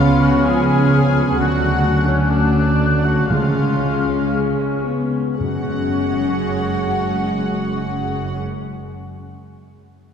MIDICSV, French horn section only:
0, 0, Header, 1, 2, 480
1, 0, Start_track
1, 0, Key_signature, 3, "minor"
1, 0, Tempo, 914634
1, 716, Time_signature, 4, 2, 24, 8
1, 1207, Tempo, 996678
1, 1687, Tempo, 1047120
1, 4823, End_track
2, 0, Start_track
2, 0, Title_t, "French horn section"
2, 0, Program_c, 0, 60
2, 0, Note_on_c, 0, 59, 56
2, 0, Note_on_c, 0, 61, 56
2, 699, Note_off_c, 0, 59, 0
2, 722, Note_on_c, 0, 57, 47
2, 1670, Note_off_c, 0, 57, 0
2, 1671, Note_off_c, 0, 61, 0
2, 1679, Note_on_c, 0, 68, 41
2, 1680, Note_on_c, 0, 61, 40
2, 2106, Note_off_c, 0, 61, 0
2, 2114, Note_off_c, 0, 68, 0
2, 2160, Note_on_c, 0, 68, 42
2, 2390, Note_off_c, 0, 68, 0
2, 2397, Note_on_c, 0, 59, 44
2, 2640, Note_on_c, 0, 61, 44
2, 2644, Note_on_c, 0, 68, 39
2, 2646, Note_off_c, 0, 59, 0
2, 3999, Note_off_c, 0, 61, 0
2, 4003, Note_off_c, 0, 68, 0
2, 4823, End_track
0, 0, End_of_file